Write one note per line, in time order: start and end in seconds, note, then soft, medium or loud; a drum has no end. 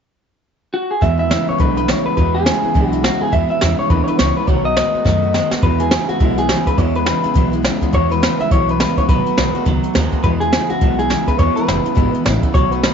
0.74 0.91 F#4 medium
0.91 1.03 G#4 medium
1.01 1.30 E2 medium
1.01 1.35 E2 medium
1.01 1.31 B2 medium
1.01 1.19 E3 medium
1.01 1.19 G#3 medium
1.01 1.18 B3 medium
1.01 1.16 E4 medium
1.01 1.18 E5 loud
1.01 kick loud
1.01 closed hi-hat medium
1.18 1.30 G#3 soft
1.18 1.30 B3 soft
1.18 1.30 E4 medium
1.18 1.48 E5 loud
1.30 1.58 E2 medium
1.30 1.58 C#3 loud
1.30 1.48 E3 medium
1.30 1.48 G#3 medium
1.30 1.48 B3 medium
1.30 1.46 E4 medium
1.30 snare loud
1.30 closed hi-hat medium
1.47 1.58 G#3 soft
1.47 1.59 B3 soft
1.47 1.59 E4 medium
1.47 1.59 C#5 medium
1.47 muted upright bass stroke medium
1.58 1.92 B1 medium
1.58 1.87 E2 medium
1.58 1.88 D3 medium
1.58 1.76 E3 medium
1.58 1.77 G#3 medium
1.58 1.76 B3 medium
1.58 1.75 E4 medium
1.58 1.76 B4 loud
1.58 kick loud
1.58 closed hi-hat medium
1.76 1.88 G#3 soft
1.76 1.89 B3 medium
1.76 1.88 E4 soft
1.76 1.89 B4 loud
1.76 closed hi-hat medium
1.88 2.15 E2 medium
1.88 2.15 C#3 medium
1.88 2.06 E3 medium
1.88 2.06 G#3 medium
1.88 2.06 B3 medium
1.88 2.04 E4 medium
1.88 2.05 C#5 medium
1.88 snare loud
1.88 closed hi-hat medium
2.05 2.16 G#3 soft
2.05 2.17 B3 soft
2.05 2.17 E4 medium
2.05 2.16 B4 medium
2.05 muted upright bass stroke medium
2.17 2.45 E2 medium
2.17 2.50 E2 medium
2.17 2.46 B2 medium
2.17 2.35 E3 medium
2.17 2.35 G#3 medium
2.17 2.35 B3 medium
2.17 2.33 E4 medium
2.17 2.35 B4 loud
2.17 kick loud
2.17 closed hi-hat medium
2.34 2.46 G#3 soft
2.34 2.46 B3 medium
2.34 2.46 E4 medium
2.34 2.87 G#4 loud
2.45 2.73 E2 medium
2.45 2.73 C#3 loud
2.45 2.63 E3 medium
2.45 2.63 B3 medium
2.45 2.62 E4 medium
2.45 snare loud
2.45 closed hi-hat medium
2.63 2.74 G#3 soft
2.63 2.75 B3 soft
2.63 2.75 E4 medium
2.63 muted upright bass stroke medium
2.74 3.08 B1 medium
2.74 3.03 E2 medium
2.74 3.05 D3 medium
2.74 2.92 E3 medium
2.74 2.92 G#3 medium
2.74 2.92 B3 medium
2.74 2.91 E4 loud
2.74 kick loud
2.74 closed hi-hat medium
2.87 3.03 F#4 loud
2.92 3.03 G#3 medium
2.92 3.04 B3 medium
2.92 3.04 E4 medium
2.92 closed hi-hat medium
3.03 3.31 E2 medium
3.03 3.31 C#3 loud
3.03 3.21 E3 medium
3.03 3.21 G#3 medium
3.03 3.22 B3 medium
3.03 3.19 E4 medium
3.03 3.21 F#4 medium
3.03 snare medium
3.03 closed hi-hat medium
3.21 3.31 G#3 soft
3.21 3.32 B3 medium
3.21 3.32 E4 medium
3.21 3.33 G#4 medium
3.21 muted upright bass stroke medium
3.32 3.60 E2 medium
3.32 3.45 E2 loud
3.32 3.62 B2 medium
3.32 3.50 E3 medium
3.32 3.50 G#3 medium
3.32 3.49 B3 medium
3.32 3.48 E4 medium
3.32 3.49 E5 loud
3.32 kick loud
3.32 closed hi-hat medium
3.49 3.61 G#3 medium
3.49 3.62 B3 medium
3.49 3.61 E4 medium
3.49 3.79 E5 loud
3.49 muted upright bass stroke medium
3.61 3.88 E2 medium
3.61 3.77 E2 medium
3.61 3.88 C#3 loud
3.61 3.79 E3 medium
3.61 3.79 G#3 medium
3.61 3.79 B3 medium
3.61 3.78 E4 medium
3.61 snare loud
3.61 closed hi-hat medium
3.79 3.90 G#3 soft
3.79 3.90 B3 medium
3.79 3.90 E4 medium
3.79 3.90 C#5 medium
3.79 muted upright bass stroke medium
3.90 4.05 D#2 medium
3.90 4.18 E2 medium
3.90 4.19 D3 loud
3.90 4.07 E3 medium
3.90 4.08 G#3 medium
3.90 4.08 B3 medium
3.90 4.06 E4 medium
3.90 4.04 B4 medium
3.90 kick loud
3.90 closed hi-hat medium
4.04 4.19 E4 medium
4.04 4.08 C#5 medium
4.04 closed hi-hat medium
4.08 4.18 G#3 soft
4.08 4.20 B3 medium
4.08 4.19 B4 medium
4.19 4.34 C#2 medium
4.19 4.46 E2 medium
4.19 4.46 C#3 medium
4.19 4.36 E3 medium
4.19 4.37 G#3 medium
4.19 4.36 B3 medium
4.19 4.34 E4 medium
4.19 4.37 C#5 medium
4.19 snare medium
4.19 closed hi-hat medium
4.36 4.48 G#3 soft
4.36 4.48 B3 soft
4.36 4.48 E4 medium
4.36 4.47 B4 medium
4.47 4.80 B1 medium
4.47 4.65 B2 medium
4.47 4.75 B2 medium
4.47 4.65 D#3 medium
4.47 4.76 F#3 medium
4.47 4.66 A3 medium
4.47 4.65 B3 medium
4.47 4.64 F#4 medium
4.47 4.65 C#5 medium
4.47 kick loud
4.47 closed hi-hat medium
4.65 4.76 A3 medium
4.65 4.77 B3 soft
4.65 4.76 F#4 medium
4.65 5.48 D#5 medium
4.76 5.03 B2 medium
4.76 4.94 D#3 medium
4.76 5.03 G#3 medium
4.76 4.94 A3 medium
4.76 4.94 B3 medium
4.76 4.92 F#4 medium
4.76 snare loud
4.76 closed hi-hat medium
4.93 5.05 A3 soft
4.93 5.05 B3 soft
4.93 5.05 F#4 soft
4.93 muted upright bass stroke medium
5.05 5.38 F#2 medium
5.05 5.22 B2 medium
5.05 5.33 B2 medium
5.05 5.23 D#3 loud
5.05 5.35 A3 medium
5.05 5.23 A3 loud
5.05 5.22 B3 loud
5.05 5.21 F#4 medium
5.05 kick loud
5.05 snare medium
5.22 5.33 A3 medium
5.22 5.34 B3 medium
5.22 5.34 F#4 medium
5.33 5.61 B2 medium
5.33 5.51 D#3 medium
5.33 5.61 G#3 medium
5.33 5.52 A3 medium
5.33 5.50 B3 medium
5.33 5.49 F#4 medium
5.33 snare medium
5.50 5.62 A3 soft
5.50 5.62 B3 soft
5.50 5.62 F#4 medium
5.50 muted upright bass stroke medium
5.50 snare medium
5.61 5.80 E2 medium
5.61 5.91 E2 medium
5.61 5.95 E2 medium
5.61 5.80 B2 medium
5.61 5.92 B2 medium
5.61 5.80 E3 medium
5.61 5.79 G#3 medium
5.61 5.78 B3 medium
5.61 5.77 E4 medium
5.61 5.81 B4 loud
5.61 kick loud
5.61 closed hi-hat medium
5.78 5.89 E3 soft
5.78 5.90 G#3 medium
5.78 5.91 B3 medium
5.78 5.91 E4 medium
5.78 6.09 G#4 medium
5.78 closed hi-hat medium
5.90 6.18 E2 medium
5.90 6.19 C#3 loud
5.90 6.08 E3 medium
5.90 6.08 G#3 medium
5.90 6.07 B3 medium
5.90 6.06 E4 medium
5.90 snare loud
5.90 closed hi-hat medium
6.07 6.19 E3 soft
6.07 6.20 G#3 soft
6.07 6.20 B3 soft
6.07 6.20 E4 medium
6.07 6.38 F#4 medium
6.07 muted upright bass stroke medium
6.07 closed hi-hat medium
6.19 6.53 B1 medium
6.19 6.37 E2 medium
6.19 6.48 E2 medium
6.19 6.38 B2 medium
6.19 6.50 B2 medium
6.19 6.38 E3 medium
6.19 6.38 G#3 medium
6.19 6.38 B3 medium
6.19 6.37 E4 medium
6.19 kick loud
6.19 closed hi-hat medium
6.38 6.48 E3 medium
6.38 6.49 G#3 medium
6.38 6.50 B3 medium
6.38 6.49 E4 medium
6.38 6.68 G#4 loud
6.38 closed hi-hat medium
6.49 6.76 E2 medium
6.49 6.76 C#3 medium
6.49 6.67 E3 medium
6.49 6.67 G#3 medium
6.49 6.66 B3 medium
6.49 6.65 E4 medium
6.49 snare loud
6.49 closed hi-hat medium
6.66 6.77 E3 soft
6.66 6.78 G#3 soft
6.66 6.78 B3 soft
6.66 6.78 E4 medium
6.66 6.78 B4 medium
6.66 muted upright bass stroke medium
6.66 kick medium
6.66 closed hi-hat medium
6.78 6.95 E2 medium
6.78 7.06 E2 medium
6.78 7.11 E2 medium
6.78 6.95 B2 medium
6.78 7.07 B2 medium
6.78 6.96 E3 medium
6.78 6.96 G#3 medium
6.78 6.95 B3 medium
6.78 6.94 E4 medium
6.78 6.96 C#5 loud
6.78 kick loud
6.78 closed hi-hat medium
6.95 7.05 E3 soft
6.95 7.06 G#3 medium
6.95 7.07 B3 medium
6.95 7.07 E4 medium
6.95 7.49 B4 loud
6.95 closed hi-hat medium
7.06 7.34 E2 medium
7.06 7.34 C#3 loud
7.06 7.24 E3 medium
7.06 7.24 G#3 medium
7.06 7.23 B3 medium
7.06 7.22 E4 medium
7.06 snare loud
7.06 closed hi-hat medium
7.23 7.34 E3 soft
7.23 7.35 G#3 soft
7.23 7.35 B3 medium
7.23 7.35 E4 medium
7.23 muted upright bass stroke medium
7.23 closed hi-hat medium
7.34 7.68 B1 medium
7.34 7.52 E2 medium
7.34 7.64 E2 medium
7.34 7.53 B2 medium
7.34 7.65 B2 medium
7.34 7.53 E3 medium
7.34 7.53 G#3 medium
7.34 7.52 B3 loud
7.34 7.50 E4 loud
7.34 kick loud
7.34 closed hi-hat medium
7.52 7.61 E3 medium
7.52 7.62 G#3 medium
7.52 7.63 B3 medium
7.52 7.64 E4 medium
7.52 closed hi-hat medium
7.62 7.91 E2 medium
7.62 7.92 C#3 medium
7.62 7.81 E3 medium
7.62 7.81 G#3 medium
7.62 7.80 B3 medium
7.62 7.79 E4 medium
7.62 snare loud
7.62 closed hi-hat medium
7.80 7.92 E3 medium
7.80 7.93 G#3 medium
7.80 7.93 B3 medium
7.80 7.93 E4 medium
7.80 muted upright bass stroke medium
7.80 kick medium
7.80 closed hi-hat medium
7.93 8.10 E2 medium
7.93 8.26 E2 medium
7.93 8.21 E2 medium
7.93 8.11 B2 medium
7.93 8.23 B2 medium
7.93 8.11 E3 medium
7.93 8.10 G#3 medium
7.93 8.10 B3 medium
7.93 8.08 E4 medium
7.93 8.11 C#5 medium
7.93 kick loud
7.93 closed hi-hat medium
8.10 8.21 E3 soft
8.10 8.22 G#3 medium
8.10 8.22 B3 medium
8.10 8.22 E4 medium
8.10 8.38 B4 loud
8.10 closed hi-hat medium
8.22 8.49 E2 loud
8.22 8.49 C#3 medium
8.22 8.39 E3 medium
8.22 8.40 G#3 medium
8.22 8.40 B3 medium
8.22 8.39 E4 medium
8.22 snare loud
8.22 closed hi-hat medium
8.40 8.51 E3 soft
8.40 8.51 G#3 soft
8.40 8.52 B3 soft
8.40 8.51 E4 soft
8.40 8.51 E5 loud
8.40 muted upright bass stroke medium
8.40 closed hi-hat medium
8.51 8.84 B1 medium
8.51 8.79 E2 medium
8.51 8.69 E2 medium
8.51 8.69 B2 medium
8.51 8.80 B2 medium
8.51 8.69 E3 medium
8.51 8.69 G#3 medium
8.51 8.68 B3 medium
8.51 8.66 E4 medium
8.51 8.69 C#5 loud
8.51 kick loud
8.51 closed hi-hat medium
8.68 8.79 E3 soft
8.68 8.79 G#3 medium
8.68 8.80 B3 medium
8.68 8.80 E4 medium
8.68 8.80 B4 medium
8.68 closed hi-hat medium
8.80 9.07 E2 medium
8.80 9.07 C#3 medium
8.80 8.97 E3 medium
8.80 8.98 G#3 medium
8.80 8.97 B3 medium
8.80 8.96 E4 medium
8.80 8.97 B4 medium
8.80 snare loud
8.80 closed hi-hat medium
8.97 9.09 E3 soft
8.97 9.10 G#3 soft
8.97 9.09 B3 medium
8.97 9.09 E4 medium
8.97 9.03 C#5 medium
8.97 muted upright bass stroke medium
8.97 kick medium
8.97 closed hi-hat medium
9.09 9.21 B1 medium
9.09 9.26 B2 medium
9.09 9.36 B2 medium
9.09 9.27 D#3 medium
9.09 9.37 F#3 medium
9.09 9.27 A3 medium
9.09 9.27 B3 medium
9.09 9.25 F#4 medium
9.09 9.63 B4 medium
9.09 kick loud
9.09 closed hi-hat medium
9.26 9.37 A3 soft
9.26 9.38 B3 soft
9.26 9.38 F#4 medium
9.26 muted upright bass stroke medium
9.26 closed hi-hat medium
9.37 9.52 B1 medium
9.37 9.64 B2 medium
9.37 9.55 D#3 medium
9.37 9.64 G#3 loud
9.37 9.55 A3 medium
9.37 9.55 B3 medium
9.37 9.53 F#4 medium
9.37 snare loud
9.37 closed hi-hat medium
9.55 9.65 A3 soft
9.55 9.66 B3 medium
9.55 9.66 F#4 medium
9.55 closed hi-hat medium
9.65 9.81 C#2 medium
9.65 9.83 B2 medium
9.65 9.95 B2 medium
9.65 9.84 D#3 loud
9.65 9.96 F#3 medium
9.65 9.84 A3 medium
9.65 9.83 B3 loud
9.65 9.82 F#4 medium
9.65 kick loud
9.65 closed hi-hat medium
9.83 9.94 A3 medium
9.83 9.95 B3 medium
9.83 9.95 F#4 medium
9.83 closed hi-hat medium
9.94 10.10 D#2 medium
9.94 10.22 B2 loud
9.94 10.12 D#3 medium
9.94 10.22 G#3 loud
9.94 10.12 A3 medium
9.94 10.12 B3 medium
9.94 10.10 F#4 medium
9.94 snare loud
9.94 closed hi-hat medium
10.11 10.24 A3 soft
10.11 10.24 B3 medium
10.11 10.23 F#4 medium
10.11 kick medium
10.11 closed hi-hat medium
10.23 10.41 E2 medium
10.23 10.56 E2 loud
10.23 10.52 E2 medium
10.23 10.41 B2 medium
10.23 10.53 B2 medium
10.23 10.41 E3 medium
10.23 10.42 G#3 medium
10.23 10.41 B3 medium
10.23 10.40 E4 medium
10.23 10.29 B4 medium
10.23 kick loud
10.23 closed hi-hat medium
10.40 10.51 E3 soft
10.40 10.52 G#3 medium
10.40 10.53 B3 soft
10.40 10.53 E4 medium
10.40 10.69 G#4 medium
10.40 closed hi-hat medium
10.52 10.79 E2 medium
10.52 10.80 C#3 loud
10.52 10.70 E3 medium
10.52 10.70 G#3 medium
10.52 10.69 B3 medium
10.52 10.68 E4 medium
10.52 snare loud
10.52 closed hi-hat medium
10.69 10.81 E3 soft
10.69 10.81 G#3 soft
10.69 10.81 B3 soft
10.69 10.81 E4 medium
10.69 10.98 F#4 medium
10.69 muted upright bass stroke medium
10.69 closed hi-hat medium
10.81 11.14 B1 medium
10.81 10.99 E2 medium
10.81 11.09 E2 medium
10.81 10.99 B2 medium
10.81 11.11 B2 medium
10.81 10.99 E3 medium
10.81 10.99 G#3 medium
10.81 10.99 B3 medium
10.81 10.98 E4 medium
10.81 kick loud
10.81 closed hi-hat medium
10.99 11.08 E3 soft
10.99 11.09 G#3 soft
10.99 11.11 B3 medium
10.99 11.10 E4 medium
10.99 11.29 G#4 loud
10.99 closed hi-hat medium
11.09 11.37 E2 medium
11.09 11.37 C#3 medium
11.09 11.27 E3 medium
11.09 11.27 G#3 medium
11.09 11.27 B3 medium
11.09 11.25 E4 medium
11.09 snare loud
11.09 closed hi-hat medium
11.26 11.38 E3 soft
11.26 11.39 G#3 soft
11.26 11.39 B3 soft
11.26 11.38 E4 medium
11.26 11.39 B4 medium
11.26 muted upright bass stroke medium
11.26 kick medium
11.26 closed hi-hat medium
11.38 11.56 E2 medium
11.38 11.67 E2 medium
11.38 11.52 E2 medium
11.38 11.57 B2 medium
11.38 11.68 B2 medium
11.38 11.57 E3 medium
11.38 11.56 G#3 medium
11.38 11.55 B3 medium
11.38 11.54 E4 medium
11.38 11.56 C#5 loud
11.38 kick loud
11.38 closed hi-hat medium
11.55 11.65 E3 medium
11.55 11.67 G#3 medium
11.55 11.68 B3 medium
11.55 11.67 E4 medium
11.55 12.10 B4 loud
11.55 muted upright bass stroke medium
11.55 closed hi-hat medium
11.67 11.83 F#1 medium
11.67 11.94 E2 loud
11.67 11.95 C#3 loud
11.67 11.85 E3 medium
11.67 11.84 G#3 medium
11.67 11.84 B3 medium
11.67 11.82 E4 medium
11.67 snare loud
11.67 closed hi-hat medium
11.84 11.94 E3 soft
11.84 11.95 G#3 soft
11.84 11.95 B3 soft
11.84 11.96 E4 medium
11.84 muted upright bass stroke medium
11.84 closed hi-hat medium
11.95 12.12 G#1 medium
11.95 12.13 E2 medium
11.95 12.24 E2 medium
11.95 12.13 B2 medium
11.95 12.25 B2 medium
11.95 12.14 E3 medium
11.95 12.13 G#3 loud
11.95 12.12 B3 medium
11.95 12.11 E4 loud
11.95 kick loud
11.95 closed hi-hat medium
12.12 12.23 E3 medium
12.12 12.24 G#3 medium
12.12 12.25 B3 medium
12.12 12.25 E4 medium
12.12 muted upright bass stroke medium
12.12 closed hi-hat medium
12.24 12.40 A1 medium
12.24 12.52 E2 medium
12.24 12.52 C#3 medium
12.24 12.42 E3 medium
12.24 12.43 G#3 medium
12.24 12.42 B3 medium
12.24 12.40 E4 medium
12.24 snare loud
12.24 closed hi-hat medium
12.42 12.54 E3 soft
12.42 12.54 G#3 medium
12.42 12.54 B3 medium
12.42 12.54 E4 medium
12.42 kick medium
12.42 closed hi-hat medium
12.54 12.87 B1 loud
12.54 12.71 B2 medium
12.54 12.82 B2 medium
12.54 12.72 D#3 medium
12.54 12.83 F#3 loud
12.54 12.72 A3 medium
12.54 12.72 B3 medium
12.54 12.70 F#4 medium
12.54 12.71 C#5 medium
12.54 kick loud
12.54 closed hi-hat medium
12.71 12.83 A3 medium
12.71 12.83 B3 medium
12.71 12.83 F#4 medium
12.71 12.94 B4 medium
12.71 closed hi-hat medium
12.82 12.94 B2 medium
12.82 12.94 D#3 medium
12.82 12.94 G#3 loud
12.82 12.94 A3 medium
12.82 12.94 B3 medium
12.82 12.94 F#4 medium
12.82 snare loud
12.82 closed hi-hat medium